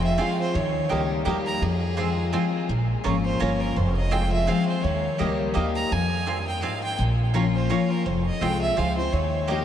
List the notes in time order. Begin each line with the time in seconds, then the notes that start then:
Already playing: F1 F2 F3 G#3 C4 F4
0.04 E5
0.18 F3 G#3 C4 F4 C5 F5 G#5
0.41 C5
0.54 D#2 D#3 C#5
0.89 C#2 G3 A#3 D#4 G4 D#5 A#5
1.25 D#2 G3 A#3 D#4 G4 D#5 A#5
1.47 A#5
1.61 F2 G#4
1.97 F3 G#3 C4 F4 C5 G#5
2.33 F3 G#3 C4 F4 C5 G#5
2.69 A#1 A#2
3.04 G#1 F3 A#3 C#4 F4 C#5 A#5
3.25 C5
3.40 G1 F3 A#3 C#4 F4 C#5 A#5
3.61 A#4
3.76 F1 F2 C5
3.97 D#5
4.11 F3 G#3 C4 F4 C5 G5 G#5
4.32 E5
4.47 F3 G#3 C4 F4 C5 F5 G#5
4.68 C5
4.83 D#2 D#3 C#5
5.18 C#2 G3 A#3 D#4 G4 D#5 A#5
5.54 D#2 G3 A#3 D#4 G4 D#5 A#5
5.76 A#5
5.91 F2 G#5
6.26 G2 C4 F4 C5 G#5
6.48 G5
6.62 G#2 C4 F4 C5 F5 G#5
6.84 G5
6.99 A#1 A#2
7.34 F3 A#3 C#4 F4 C#5 A#5
7.55 C5
7.69 F3 A#3 C#4 F4 C#5 A#5
7.90 A#4
8.06 F1 F2 C5
8.26 D#5
8.41 C2 F3 G#3 C4 F4 C5 G5 G#5
8.62 E5
8.77 C#2 F3 G#3 C4 F4 C5 F5 G#5
8.97 C4 F4 C5
9.12 D#2 D#3 C#5
9.48 G3 A#3 D#4 G4 D#5 A#5